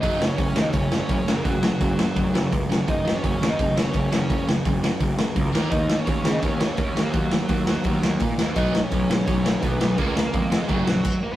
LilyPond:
<<
  \new Staff \with { instrumentName = "Lead electric guitar" } { \time 4/4 \key fis \major \tempo 4 = 169 <dis' dis''>8. <cis' cis''>16 <cis' cis''>8. <dis' dis''>16 <cis' cis''>8. <cis' cis''>4 <ais ais'>16 | <fis fis'>2. r4 | <dis' dis''>8. <cis' cis''>16 <cis' cis''>8. <dis' dis''>8. <cis' cis''>4 <cis' cis''>8~ | <cis' cis''>8 r2. r8 |
<dis' dis''>8. <cis' cis''>16 <cis' cis''>8. <dis' dis''>16 <cis' cis''>8. <cis' cis''>4 <ais ais'>16 | <fis fis'>2. r4 | <dis' dis''>8. <cis' cis''>4~ <cis' cis''>16 <cis' cis''>4 <b b'>4 | <ais ais'>8 <ais ais'>4 <gis gis'>8 <fis fis'>4. <ais ais'>16 <b b'>16 | }
  \new Staff \with { instrumentName = "Distorted electric guitar" } { \clef bass \time 4/4 \key fis \major <fis, cis fis>8 <fis, cis>8 <fis, cis>8 <fis, cis>8 <fis, cis>8 <fis, cis>8 <fis, cis>8 <fis, cis>8 | <fis, cis>8 <fis, cis>8 <fis, cis>8 <fis, cis>8 <fis, cis>8 <fis, cis>8 <fis, cis>8 <fis, cis>8 | <fis, cis>8 <fis, cis>8 <fis, cis>8 <fis, cis>8 <fis, cis>8 <fis, cis>8 <fis, cis>8 <fis, cis>8 | <fis, cis>8 <fis, cis>8 <fis, cis>8 <fis, cis>8 <fis, cis>8 <fis, cis>8 <fis, cis>8 <dis ais dis'>8 |
<dis ais>8 <dis ais>8 <dis ais>8 <dis ais>8 <dis ais>8 <dis ais>8 <dis ais>8 <dis ais>8 | <dis ais>8 <dis ais>8 <dis ais>8 <dis ais>8 <dis ais>8 <dis ais>8 <dis ais>8 <dis ais>8 | <b, fis b>8 <b, fis>8 <b, fis>8 <b, fis>8 <b, fis>8 <b, fis>8 <b, fis>8 <b, fis>8 | <cis gis cis'>8 <cis gis>8 <cis gis>8 <cis gis>8 <fis, cis fis>8 <fis, cis>8 r4 | }
  \new Staff \with { instrumentName = "Overdriven electric guitar" } { \clef bass \time 4/4 \key fis \major <fis, cis fis>8 <fis, cis>8 <fis, cis>8 <fis, cis>8 <fis, cis>8 <fis, cis>8 <fis, cis>8 <fis, cis>8 | <fis, cis>8 <fis, cis>8 <fis, cis>8 <fis, cis>8 <fis, cis>8 <fis, cis>8 <fis, cis>8 <fis, cis>8 | <fis, cis>8 <fis, cis>8 <fis, cis>8 <fis, cis>8 <fis, cis>8 <fis, cis>8 <fis, cis>8 <fis, cis>8 | <fis, cis>8 <fis, cis>8 <fis, cis>8 <fis, cis>8 <fis, cis>8 <fis, cis>8 <fis, cis>8 <dis ais dis'>8 |
<dis ais>8 <dis ais>8 <dis ais>8 <dis ais>8 <dis ais>8 <dis ais>8 <dis ais>8 <dis ais>8 | <dis ais>8 <dis ais>8 <dis ais>8 <dis ais>8 <dis ais>8 <dis ais>8 <dis ais>8 <dis ais>8 | <b, fis b>8 <b, fis>8 <b, fis>8 <b, fis>8 <b, fis>8 <b, fis>8 <b, fis>8 <b, fis>8 | <cis gis cis'>8 <cis gis>8 <cis gis>8 <cis gis>8 <fis, cis fis>8 <fis, cis>8 r4 | }
  \new Staff \with { instrumentName = "Picked electric bass" } { \clef bass \time 4/4 \key fis \major fis,,4 fis,,8 dis,8 fis,,4 fis,,8 fis,,8 | fis,,4 fis,,4 fis,,8 fis,,8 cis,8 fis,,8 | fis,,4 fis,,8 dis,8 fis,,4 fis,,8 fis,,8 | fis,,4 fis,,4 fis,,8 fis,,8 cis,8 dis,8 |
dis,4 dis,8 cis8 dis,4 dis,8 dis,8 | dis,4 dis,4 dis,8 dis,8 ais,8 dis,8 | b,,4 b,,8 gis,8 b,,4 b,,8 b,,8 | cis,4 eis,4 fis,,8 ais,,8 r4 | }
  \new DrumStaff \with { instrumentName = "Drums" } \drummode { \time 4/4 <hho bd>8 sn8 <hho bd>8 sn8 <hho bd>8 sn8 <hho bd>8 sn8 | <hho bd>8 sn8 <hho bd>8 sn8 <hho bd>8 sn8 <hho bd>8 sn8 | <hho bd>8 sn8 <hho bd>8 sn8 <hho bd>8 sn8 <hho bd>8 sn8 | <hho bd>8 sn8 <hho bd>8 sn8 <hho bd>8 sn8 <hho bd>8 sn8 |
<hho bd>8 sn8 <hho bd>8 sn8 <hho bd>8 sn8 <hho bd>8 sn8 | <hho bd>8 sn8 <hho bd>8 sn8 <hho bd>8 sn8 <hho bd>8 sn8 | <hho bd>8 sn8 <hho bd>8 sn8 <hho bd>8 sn8 <hho bd>8 sn8 | <hho bd>8 sn8 <hho bd>8 sn8 <hho bd>8 sn8 <cymc bd>4 | }
>>